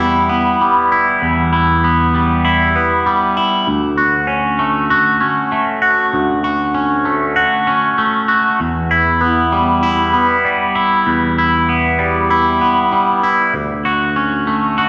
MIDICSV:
0, 0, Header, 1, 2, 480
1, 0, Start_track
1, 0, Tempo, 616016
1, 946, Time_signature, 4, 2, 24, 8
1, 11602, End_track
2, 0, Start_track
2, 0, Title_t, "Clean electric guitar"
2, 0, Program_c, 0, 27
2, 0, Note_on_c, 0, 40, 82
2, 0, Note_on_c, 0, 55, 79
2, 0, Note_on_c, 0, 59, 74
2, 0, Note_on_c, 0, 64, 91
2, 218, Note_off_c, 0, 59, 0
2, 226, Note_off_c, 0, 40, 0
2, 228, Note_on_c, 0, 59, 71
2, 467, Note_off_c, 0, 55, 0
2, 476, Note_on_c, 0, 55, 76
2, 706, Note_off_c, 0, 64, 0
2, 715, Note_on_c, 0, 64, 74
2, 951, Note_on_c, 0, 40, 81
2, 1181, Note_off_c, 0, 64, 0
2, 1190, Note_on_c, 0, 64, 71
2, 1424, Note_off_c, 0, 59, 0
2, 1434, Note_on_c, 0, 59, 67
2, 1663, Note_off_c, 0, 55, 0
2, 1673, Note_on_c, 0, 55, 68
2, 1897, Note_off_c, 0, 64, 0
2, 1906, Note_on_c, 0, 64, 76
2, 2138, Note_off_c, 0, 59, 0
2, 2145, Note_off_c, 0, 40, 0
2, 2147, Note_on_c, 0, 59, 67
2, 2376, Note_off_c, 0, 55, 0
2, 2386, Note_on_c, 0, 55, 73
2, 2616, Note_off_c, 0, 64, 0
2, 2625, Note_on_c, 0, 64, 72
2, 2862, Note_on_c, 0, 38, 75
2, 2863, Note_off_c, 0, 55, 0
2, 2863, Note_off_c, 0, 59, 0
2, 2863, Note_off_c, 0, 64, 0
2, 3098, Note_on_c, 0, 66, 66
2, 3329, Note_on_c, 0, 61, 69
2, 3577, Note_on_c, 0, 57, 69
2, 3812, Note_off_c, 0, 66, 0
2, 3821, Note_on_c, 0, 66, 86
2, 4048, Note_off_c, 0, 61, 0
2, 4057, Note_on_c, 0, 61, 72
2, 4059, Note_off_c, 0, 38, 0
2, 4291, Note_off_c, 0, 57, 0
2, 4301, Note_on_c, 0, 57, 74
2, 4524, Note_off_c, 0, 66, 0
2, 4534, Note_on_c, 0, 66, 77
2, 4778, Note_on_c, 0, 38, 82
2, 5009, Note_off_c, 0, 66, 0
2, 5019, Note_on_c, 0, 66, 70
2, 5247, Note_off_c, 0, 61, 0
2, 5256, Note_on_c, 0, 61, 75
2, 5487, Note_off_c, 0, 57, 0
2, 5496, Note_on_c, 0, 57, 73
2, 5725, Note_off_c, 0, 66, 0
2, 5735, Note_on_c, 0, 66, 93
2, 5969, Note_off_c, 0, 61, 0
2, 5976, Note_off_c, 0, 38, 0
2, 5978, Note_on_c, 0, 61, 73
2, 6210, Note_off_c, 0, 57, 0
2, 6220, Note_on_c, 0, 57, 78
2, 6445, Note_off_c, 0, 66, 0
2, 6454, Note_on_c, 0, 66, 73
2, 6695, Note_off_c, 0, 66, 0
2, 6696, Note_off_c, 0, 61, 0
2, 6697, Note_off_c, 0, 57, 0
2, 6701, Note_on_c, 0, 40, 80
2, 6942, Note_on_c, 0, 64, 78
2, 7176, Note_on_c, 0, 59, 78
2, 7420, Note_on_c, 0, 55, 71
2, 7649, Note_off_c, 0, 64, 0
2, 7658, Note_on_c, 0, 64, 86
2, 7886, Note_off_c, 0, 59, 0
2, 7895, Note_on_c, 0, 59, 70
2, 7898, Note_off_c, 0, 40, 0
2, 8130, Note_off_c, 0, 55, 0
2, 8140, Note_on_c, 0, 55, 76
2, 8370, Note_off_c, 0, 64, 0
2, 8379, Note_on_c, 0, 64, 80
2, 8623, Note_on_c, 0, 40, 82
2, 8861, Note_off_c, 0, 64, 0
2, 8870, Note_on_c, 0, 64, 79
2, 9096, Note_off_c, 0, 59, 0
2, 9108, Note_on_c, 0, 59, 68
2, 9332, Note_off_c, 0, 55, 0
2, 9341, Note_on_c, 0, 55, 77
2, 9578, Note_off_c, 0, 64, 0
2, 9588, Note_on_c, 0, 64, 85
2, 9818, Note_off_c, 0, 59, 0
2, 9822, Note_off_c, 0, 40, 0
2, 9827, Note_on_c, 0, 59, 72
2, 10060, Note_off_c, 0, 55, 0
2, 10070, Note_on_c, 0, 55, 77
2, 10302, Note_off_c, 0, 64, 0
2, 10312, Note_on_c, 0, 64, 77
2, 10544, Note_off_c, 0, 59, 0
2, 10545, Note_off_c, 0, 55, 0
2, 10546, Note_off_c, 0, 64, 0
2, 10547, Note_on_c, 0, 38, 75
2, 10792, Note_on_c, 0, 66, 76
2, 11034, Note_on_c, 0, 61, 72
2, 11276, Note_on_c, 0, 57, 69
2, 11506, Note_off_c, 0, 66, 0
2, 11516, Note_on_c, 0, 66, 80
2, 11602, Note_off_c, 0, 38, 0
2, 11602, Note_off_c, 0, 57, 0
2, 11602, Note_off_c, 0, 61, 0
2, 11602, Note_off_c, 0, 66, 0
2, 11602, End_track
0, 0, End_of_file